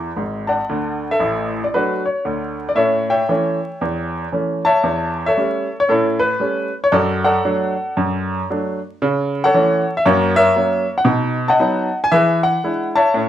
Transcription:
0.00 0.46 E4 soft
0.00 0.21 A4 medium
0.17 0.59 G#1 soft
0.17 0.59 G#2 medium
0.47 1.07 D5 medium
0.47 1.07 F#5 medium
0.47 1.01 A5 medium
0.69 1.11 D2 medium
0.69 1.11 D3 medium
1.11 1.60 A4 medium
1.11 1.56 E5 medium
1.19 1.62 A1 medium
1.19 1.62 A2 medium
1.64 1.74 D5 medium
1.74 2.02 F#3 soft
1.74 2.02 A3 soft
1.74 2.04 D4 medium
1.74 2.04 F#4 medium
1.74 2.01 B4 medium
2.06 2.58 C#5 medium
2.25 2.67 D2 medium
2.25 2.67 D3 medium
2.69 2.78 D5 medium
2.75 3.20 A2 medium
2.75 3.06 C#4 soft
2.75 3.07 A4 soft
2.75 3.06 C#5 medium
2.75 3.03 E5 medium
3.10 4.30 C#5 medium
3.10 4.29 E5 medium
3.10 4.15 G5 medium
3.29 3.57 E3 medium
3.29 3.58 A3 medium
3.29 3.58 C#4 medium
3.81 4.25 E2 medium
4.32 4.61 E3 soft
4.32 4.62 A3 soft
4.32 4.61 C#4 soft
4.65 5.23 C#5 medium
4.65 5.23 E5 medium
4.65 5.17 A5 medium
4.83 5.28 E2 medium
5.26 5.75 A4 medium
5.26 5.75 C#5 medium
5.26 5.70 E5 medium
5.37 5.66 G3 medium
5.37 5.65 A3 medium
5.37 5.66 C#4 medium
5.80 5.89 C#5 medium
5.89 6.33 A2 medium
5.89 6.19 C#4 medium
5.89 6.19 E4 medium
5.89 6.16 A4 medium
6.19 6.72 B4 medium
6.40 6.68 G3 soft
6.40 6.69 A3 soft
6.40 6.69 C#4 medium
6.84 6.93 C#5 medium
6.92 7.36 F#2 medium
6.92 7.22 F#4 medium
6.92 7.22 A4 medium
6.92 7.19 D5 medium
7.24 8.44 A4 medium
7.24 8.44 D5 medium
7.24 8.29 F#5 medium
7.45 7.73 F#3 medium
7.45 7.73 A3 medium
7.45 7.73 D4 medium
7.97 8.40 F#2 medium
8.50 8.78 F#3 medium
8.50 8.78 A3 soft
8.50 8.78 D4 medium
9.02 9.45 C#3 medium
9.44 9.91 A4 medium
9.44 9.91 C#5 medium
9.44 9.87 F#5 medium
9.54 9.82 E3 medium
9.54 9.82 A3 medium
9.54 9.82 C#4 medium
9.97 10.05 E5 medium
10.06 10.49 F#2 loud
10.06 10.35 A#3 medium
10.06 10.35 F#4 medium
10.06 10.35 A#4 medium
10.06 10.31 C#5 medium
10.36 10.94 A#4 medium
10.36 10.94 C#5 medium
10.36 10.88 E5 loud
10.56 10.84 F#3 medium
10.56 10.85 A#3 medium
10.56 10.85 C#4 medium
10.98 11.07 F#5 medium
11.05 11.49 B2 medium
11.05 11.36 D#4 soft
11.48 11.97 D#5 medium
11.48 11.97 F#5 medium
11.48 11.92 A5 medium
11.59 11.88 F#3 medium
11.59 11.88 B3 medium
11.59 11.88 D#4 medium
12.04 12.12 G#5 loud
12.12 12.55 E3 medium
12.12 12.41 G#4 medium
12.12 12.41 B4 medium
12.12 12.38 E5 loud
12.43 12.87 F#5 medium
12.64 12.92 G#3 soft
12.64 12.92 D4 soft
12.64 12.92 E4 medium
12.95 13.29 C#5 medium
12.95 13.29 E5 medium
12.95 13.29 A5 loud
13.14 13.29 A2 medium
13.14 13.29 C#4 soft

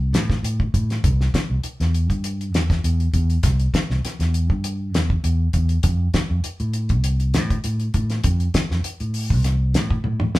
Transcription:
0.00 0.14 C2 medium
0.13 0.36 A2 medium
0.13 snare medium
0.13 closed hi-hat medium
0.30 kick medium
0.30 snare soft
0.43 0.66 A2 medium
0.43 closed hi-hat medium
0.60 kick medium
0.74 0.97 A2 medium
0.74 kick medium
0.74 closed hi-hat medium
0.90 snare soft
0.90 closed hi-hat soft
1.04 1.27 C2 loud
1.04 kick loud
1.04 closed hi-hat medium
1.21 snare soft
1.34 kick medium
1.34 snare medium
1.34 closed hi-hat soft
1.50 1.60 C2 medium
1.64 closed hi-hat medium
1.80 2.10 E2 medium
1.80 snare soft
1.80 closed hi-hat soft
1.94 closed hi-hat soft
2.10 2.53 G2 medium
2.10 kick medium
2.10 closed hi-hat soft
2.24 closed hi-hat medium
2.41 closed hi-hat soft
2.53 2.76 E2 medium
2.53 snare medium
2.53 closed hi-hat medium
2.70 kick medium
2.70 snare soft
2.70 closed hi-hat soft
2.84 3.07 E2 medium
2.84 closed hi-hat medium
3.00 closed hi-hat soft
3.14 3.37 E2 medium
3.14 kick medium
3.14 closed hi-hat soft
3.30 closed hi-hat soft
3.43 3.67 C2 loud
3.43 kick medium
3.43 snare soft
3.43 closed hi-hat medium
3.60 closed hi-hat soft
3.74 kick medium
3.74 snare medium
3.74 closed hi-hat medium
3.90 4.01 C2 medium
3.90 snare soft
4.05 snare soft
4.05 closed hi-hat medium
4.19 4.50 E2 medium
4.19 snare soft
4.19 closed hi-hat soft
4.34 closed hi-hat medium
4.50 4.94 G2 medium
4.50 kick medium
4.64 closed hi-hat medium
4.94 5.17 E2 loud
4.94 snare medium
4.94 closed hi-hat medium
5.10 kick medium
5.24 5.47 E2 medium
5.24 closed hi-hat medium
5.53 5.77 E2 medium
5.53 kick medium
5.53 closed hi-hat medium
5.69 closed hi-hat soft
5.83 6.07 F2 loud
5.83 kick loud
5.83 closed hi-hat medium
6.14 kick medium
6.14 snare medium
6.14 closed hi-hat medium
6.30 6.41 F2 medium
6.44 muted fingered electric bass stroke soft
6.44 closed hi-hat medium
6.60 6.92 A2 medium
6.60 closed hi-hat soft
6.73 closed hi-hat medium
6.89 7.36 C2 medium
6.89 kick medium
6.89 closed hi-hat soft
7.04 closed hi-hat medium
7.20 closed hi-hat soft
7.34 7.57 A2 loud
7.34 snare medium
7.34 closed hi-hat medium
7.50 kick medium
7.50 closed hi-hat soft
7.64 7.87 A2 medium
7.64 closed hi-hat medium
7.80 closed hi-hat soft
7.94 8.17 A2 medium
7.94 kick medium
7.94 closed hi-hat soft
8.10 snare soft
8.10 closed hi-hat soft
8.24 8.47 F2 loud
8.24 kick loud
8.24 closed hi-hat medium
8.40 closed hi-hat soft
8.54 kick medium
8.54 snare medium
8.54 closed hi-hat medium
8.70 8.81 F2 medium
8.70 snare soft
8.84 muted fingered electric bass stroke soft
8.84 closed hi-hat medium
9.00 9.32 A2 medium
9.00 closed hi-hat soft
9.14 open hi-hat medium
9.30 9.76 C2 medium
9.30 kick medium
9.44 snare soft
9.44 closed hi-hat medium
9.74 9.97 A2 loud
9.74 snare medium
9.74 closed hi-hat medium
9.90 kick medium
10.04 10.28 A2 medium
10.04 high tom soft
10.20 mid tom medium
10.35 10.39 A2 medium
10.35 snare medium

